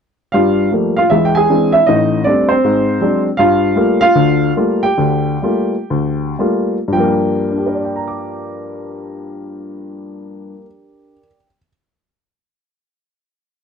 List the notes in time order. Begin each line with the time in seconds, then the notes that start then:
0.32 G2 G3 F4 F5
0.72 F3 G3 A3 A#3
0.97 F4 F5
1.10 E2 G#3 E4 E5
1.25 G5
1.35 G#4 G#5
1.50 E3 G#3 C4 D4
1.72 E4 E5
1.87 A1 A2 D#4 D#5
2.24 G3 A3 C4 D4 D5
2.49 C4 C5
2.64 G#2
3.01 F#3 G#3 C4 D4
3.37 G2 F4 F5
3.76 G3 A3 A#3 F4
4.01 F4 F5
4.15 D2 D3
4.57 G3 A3 A#3 F4
4.83 G4 G5
4.98 D2 D3
5.42 G3 A3 A#3 F4
5.90 D2
6.39 G3 A3 A#3 F4
6.88 G2
6.92 F3 G3 G5
7.00 A#3
7.50 D4
7.58 G4
7.66 A#4
7.75 D5
7.85 G5
7.96 A#5
8.08 D6